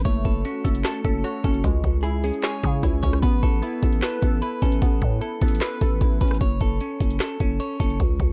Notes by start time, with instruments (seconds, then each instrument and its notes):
0.05 808-style bass F#1, synth keys A3, clean electric guitar C#5, kick, closed hi-hat
0.25 808-style bass F#1, clean electric guitar A4, kick
0.45 clean electric guitar C#4, synth keys F#4, closed hi-hat
0.64 808-style bass F#1, synth keys A4, kick, closed hi-hat
0.75 closed hi-hat
0.84 clean electric guitar A4, synth keys A5, snare, clap, closed hi-hat
1.05 808-style bass F#1, clean electric guitar C#4, synth keys A4, kick, closed hi-hat
1.24 synth keys F#4, clean electric guitar C#5, closed hi-hat
1.44 808-style bass F#1, synth keys C#4, clean electric guitar A4, kick, closed hi-hat
1.54 closed hi-hat
1.64 808-style bass C#2, synth keys G#3, kick, closed hi-hat
1.84 808-style bass C#2, kick
2.03 synth keys E4, clean electric guitar G#4, closed hi-hat
2.24 clean electric guitar C#4, synth keys G#4, closed hi-hat, open hi-hat
2.34 closed hi-hat
2.43 clean electric guitar C#5, synth keys G#5, snare, clap, closed hi-hat
2.63 808-style bass C#3, synth keys G#4, kick, closed hi-hat
2.83 808-style bass C#2, synth keys E4, kick, closed hi-hat
3.03 808-style bass C#2, synth keys C#4, clean electric guitar C#5, kick, closed hi-hat
3.13 cross-stick, closed hi-hat
3.22 808-style bass A1, synth keys B3, clean electric guitar B4, kick, closed hi-hat
3.43 808-style bass A1, clean electric guitar A4, kick
3.62 clean electric guitar B3, synth keys E4, closed hi-hat
3.82 808-style bass A1, synth keys A4, kick, closed hi-hat
3.93 closed hi-hat
4.02 clean electric guitar A4, synth keys B4, snare, clap, closed hi-hat
4.22 808-style bass A1, clean electric guitar B3, synth keys A4, kick, closed hi-hat
4.42 synth keys E4, clean electric guitar B4, closed hi-hat
4.62 808-style bass A1, synth keys C#4, clean electric guitar A4, kick, closed hi-hat
4.72 closed hi-hat
4.82 808-style bass A1, synth keys B3, kick, closed hi-hat
5.02 808-style bass A2, kick
5.21 synth keys E4, clean electric guitar A4, closed hi-hat
5.42 808-style bass A1, clean electric guitar B3, synth keys A4, kick, closed hi-hat
5.48 closed hi-hat
5.55 closed hi-hat
5.61 clean electric guitar B4, synth keys B4, snare, clap, closed hi-hat
5.81 808-style bass A1, synth keys A4, kick, closed hi-hat
6.01 808-style bass A1, synth keys E4, kick, closed hi-hat
6.21 808-style bass A1, synth keys C#4, clean electric guitar B4, kick, closed hi-hat
6.28 cross-stick, closed hi-hat
6.34 closed hi-hat
6.41 808-style bass F#1, clean electric guitar C#5, kick, closed hi-hat
6.61 808-style bass F#1, clean electric guitar A4, kick
6.81 clean electric guitar C#4, closed hi-hat
7.00 808-style bass F#1, kick, closed hi-hat
7.10 closed hi-hat
7.20 clean electric guitar A4, snare, clap, closed hi-hat
7.40 808-style bass F#1, clean electric guitar C#4, kick, closed hi-hat
7.60 clean electric guitar C#5, closed hi-hat
7.80 808-style bass F#1, clean electric guitar A4, kick, closed hi-hat
7.90 closed hi-hat
8.00 808-style bass C#2, kick, closed hi-hat
8.20 808-style bass C#2, kick